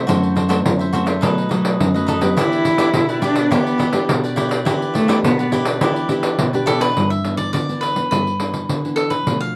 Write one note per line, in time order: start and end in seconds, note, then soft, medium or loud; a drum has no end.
0.07 0.62 F#2 medium
0.07 0.35 E3 medium
0.07 0.35 A3 medium
0.07 0.35 C4 medium
0.07 0.34 F#4 medium
0.07 0.36 A4 medium
0.07 0.36 C5 medium
0.07 0.36 E5 medium
0.07 pandeiro medium
0.23 pandeiro soft
0.36 0.47 F#4 soft
0.36 0.48 A4 soft
0.36 0.48 C5 soft
0.36 0.48 E5 soft
0.36 pandeiro medium
0.49 0.88 E3 medium
0.49 0.89 A3 medium
0.49 0.89 C4 medium
0.49 0.59 F#4 medium
0.49 0.59 A4 medium
0.49 0.59 C5 medium
0.49 0.59 E5 medium
0.49 pandeiro medium
0.65 1.20 F#2 medium
0.65 pandeiro medium
0.79 0.92 A4 soft
0.79 0.93 C5 soft
0.79 0.93 E5 medium
0.79 pandeiro soft
0.93 1.10 E3 medium
0.93 1.11 A3 medium
0.93 1.11 C4 medium
0.93 1.06 F#4 medium
0.93 1.07 A4 medium
0.93 1.06 C5 medium
0.93 1.05 E5 medium
0.93 pandeiro medium
1.06 1.21 A4 soft
1.06 1.21 C5 soft
1.06 1.20 E5 soft
1.06 pandeiro medium
1.21 1.77 B2 medium
1.21 1.47 F#3 medium
1.21 1.47 A3 medium
1.21 1.48 D#4 medium
1.21 1.47 D#4 medium
1.21 1.49 A4 medium
1.21 1.50 B4 medium
1.21 1.50 D#5 medium
1.21 pandeiro medium
1.38 pandeiro soft
1.49 1.78 F#3 medium
1.49 1.78 A3 medium
1.49 1.92 D#4 soft
1.49 1.78 D#4 medium
1.49 1.93 A4 soft
1.49 1.93 B4 medium
1.49 1.93 D#5 medium
1.49 pandeiro medium
1.65 pandeiro medium
1.80 2.34 F#2 medium
1.80 pandeiro medium
1.94 2.19 F#3 medium
1.94 2.19 A3 medium
1.94 2.19 D#4 medium
1.94 2.07 A4 soft
1.94 2.07 B4 soft
1.94 2.08 D#5 soft
1.94 pandeiro soft
2.07 2.21 D#4 medium
2.07 2.21 A4 medium
2.07 2.21 B4 medium
2.07 2.20 D#5 medium
2.07 pandeiro medium
2.21 2.75 B3 medium
2.21 2.75 D4 medium
2.21 2.75 G4 medium
2.21 2.36 A4 soft
2.21 2.36 B4 soft
2.21 2.35 D#5 medium
2.21 pandeiro medium
2.36 2.91 E3 medium
2.36 3.19 E4 loud
2.36 2.63 E4 medium
2.36 2.64 G4 medium
2.36 2.65 B4 medium
2.36 2.66 D5 medium
2.36 pandeiro medium
2.52 pandeiro soft
2.65 2.77 E4 soft
2.65 2.78 G4 soft
2.65 2.78 B4 soft
2.65 2.79 D5 medium
2.65 pandeiro medium
2.78 3.18 B3 medium
2.78 3.18 D4 medium
2.78 2.88 E4 medium
2.78 2.88 G4 medium
2.78 3.18 G4 medium
2.78 2.89 B4 medium
2.78 2.89 D5 medium
2.78 pandeiro medium
2.94 3.49 B2 medium
2.94 pandeiro medium
3.09 3.21 G4 soft
3.09 3.22 B4 soft
3.09 3.22 D5 medium
3.09 pandeiro soft
3.21 3.39 B3 medium
3.21 3.39 D4 medium
3.21 3.54 D4 medium
3.21 3.36 E4 medium
3.21 3.36 G4 medium
3.21 3.40 G4 medium
3.21 3.35 B4 medium
3.21 3.34 D5 medium
3.21 pandeiro medium
3.35 3.50 G4 soft
3.35 3.50 B4 soft
3.35 3.50 D5 soft
3.35 pandeiro medium
3.51 4.06 E3 medium
3.51 3.78 B3 medium
3.51 4.09 B3 medium
3.51 3.79 D4 medium
3.51 3.77 E4 medium
3.51 3.78 G4 medium
3.51 3.79 G4 medium
3.51 3.78 B4 medium
3.51 3.79 D5 medium
3.51 pandeiro medium
3.67 pandeiro soft
3.78 4.21 E4 soft
3.78 4.22 G4 medium
3.78 4.22 B4 medium
3.78 4.22 D5 medium
3.78 pandeiro medium
3.93 4.32 B3 medium
3.93 4.33 D4 medium
3.93 4.33 G4 medium
3.93 pandeiro medium
4.09 4.64 B2 medium
4.09 pandeiro medium
4.24 4.36 G4 soft
4.24 4.36 B4 soft
4.24 4.37 D5 medium
4.24 pandeiro soft
4.36 4.61 B3 medium
4.36 4.61 D4 medium
4.36 4.50 E4 medium
4.36 4.50 G4 medium
4.36 4.62 G4 medium
4.36 4.49 B4 medium
4.36 4.48 D5 medium
4.36 pandeiro medium
4.49 4.65 G4 soft
4.49 4.65 B4 soft
4.49 4.64 D5 medium
4.49 pandeiro medium
4.65 5.21 E3 medium
4.65 5.04 B3 medium
4.65 5.05 D4 medium
4.65 4.92 E4 medium
4.65 4.93 G4 medium
4.65 5.05 G4 medium
4.65 4.94 B4 medium
4.65 4.95 D5 medium
4.65 pandeiro medium
4.82 pandeiro soft
4.94 5.22 A3 medium
4.94 5.07 E4 medium
4.94 5.08 G4 medium
4.94 5.08 B4 soft
4.94 5.08 D5 soft
4.94 pandeiro medium
5.07 5.47 B3 medium
5.07 5.47 D4 medium
5.07 5.18 E4 medium
5.07 5.47 G4 medium
5.07 5.18 G4 medium
5.07 5.18 B4 medium
5.07 5.19 D5 medium
5.07 pandeiro medium
5.23 5.78 B2 medium
5.23 5.41 B3 medium
5.23 pandeiro medium
5.39 5.52 G4 soft
5.39 5.53 B4 soft
5.39 5.52 D5 medium
5.39 pandeiro soft
5.51 5.76 B3 medium
5.51 5.76 D4 medium
5.51 5.66 E4 medium
5.51 5.76 G4 medium
5.51 5.66 G4 medium
5.51 5.65 B4 medium
5.51 5.64 D5 medium
5.51 pandeiro medium
5.65 5.81 G4 soft
5.65 5.80 B4 soft
5.65 5.79 D5 medium
5.65 pandeiro medium
5.81 6.36 E3 medium
5.81 6.05 B3 medium
5.81 6.05 D4 medium
5.81 6.07 E4 medium
5.81 6.06 G4 medium
5.81 6.09 G4 medium
5.81 6.09 B4 medium
5.81 6.10 D5 medium
5.81 pandeiro medium
5.96 pandeiro soft
6.09 6.36 B3 medium
6.09 6.37 D4 medium
6.09 6.51 E4 soft
6.09 6.37 G4 medium
6.09 6.52 G4 medium
6.09 6.52 B4 medium
6.09 6.52 D5 medium
6.09 pandeiro medium
6.23 pandeiro medium
6.39 6.93 B2 medium
6.39 pandeiro medium
6.53 6.78 B3 medium
6.53 6.78 D4 medium
6.53 6.78 G4 medium
6.53 6.66 G4 soft
6.53 6.66 B4 soft
6.53 6.66 D5 soft
6.53 pandeiro soft
6.66 6.80 E4 medium
6.66 6.80 G4 medium
6.66 6.82 A4 medium
6.66 6.80 B4 medium
6.66 6.79 D5 medium
6.66 pandeiro medium
6.80 7.23 E3 medium
6.80 7.23 B3 medium
6.80 7.24 D4 medium
6.80 6.95 G4 soft
6.80 7.08 B4 medium
6.80 6.95 B4 soft
6.80 6.94 D5 medium
6.80 pandeiro medium
6.96 7.51 G2 medium
6.96 pandeiro medium
7.10 7.37 E5 medium
7.10 pandeiro soft
7.24 7.51 E3 soft
7.24 7.52 B3 soft
7.24 7.52 D4 soft
7.24 pandeiro medium
7.37 7.52 D5 medium
7.37 pandeiro soft
7.53 8.08 D3 medium
7.53 7.83 D5 medium
7.53 pandeiro medium
7.69 7.93 E3 soft
7.69 7.93 B3 soft
7.69 7.93 D4 soft
7.69 pandeiro soft
7.81 8.10 B4 medium
7.81 pandeiro medium
7.95 8.06 E3 soft
7.95 8.06 B3 soft
7.95 8.06 D4 medium
7.95 pandeiro soft
8.11 8.66 G2 medium
8.11 8.28 E3 soft
8.11 8.28 B3 soft
8.11 8.29 D4 soft
8.11 8.93 B4 medium
8.11 pandeiro medium
8.27 pandeiro soft
8.39 8.78 E3 soft
8.39 8.78 B3 soft
8.39 8.79 D4 soft
8.39 pandeiro medium
8.54 pandeiro soft
8.69 9.24 D3 medium
8.69 pandeiro medium
8.84 9.22 E3 soft
8.84 9.22 B3 soft
8.84 9.23 D4 medium
8.84 pandeiro soft
8.96 9.12 A4 medium
8.96 pandeiro medium
9.10 9.38 B4 medium
9.10 pandeiro soft
9.26 9.56 B2 medium
9.26 9.53 F3 soft
9.26 9.53 A3 soft
9.26 9.54 D4 soft
9.26 pandeiro medium
9.41 9.56 F5 medium
9.41 pandeiro soft